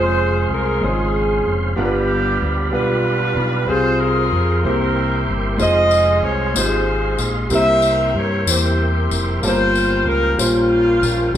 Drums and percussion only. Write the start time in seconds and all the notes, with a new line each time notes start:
5.59 tambourine
5.91 tambourine
6.56 tambourine
7.19 tambourine
7.50 tambourine
7.82 tambourine
8.47 tambourine
9.11 tambourine
9.43 tambourine
9.75 tambourine
10.39 tambourine
11.03 tambourine